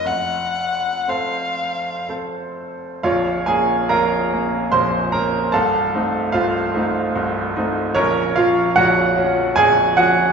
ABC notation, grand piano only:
X:1
M:3/4
L:1/8
Q:1/4=74
K:Bbm
V:1 name="Grand piano"
z6 | [Fdf] [Aa] [Bfb]2 [cc'] [Bb] | [=Af=a]2 [Fcf]3 z | [DBd] [Ff] [Gg]2 [Aa] [Gg] |]
V:2 name="Grand piano"
F,,,2 [C=Ac]2 [CAc]2 | [B,,,,B,,,] [B,D] [B,,,,B,,,] [B,D] [B,,,,B,,,] [B,D] | [C,,,C,,] [=A,CE] [C,,,C,,] [A,CE] [C,,,C,,] [A,CE] | [B,,,,B,,,] [F,D] [B,,,,B,,,] [F,D] [B,,,,B,,,] [F,D] |]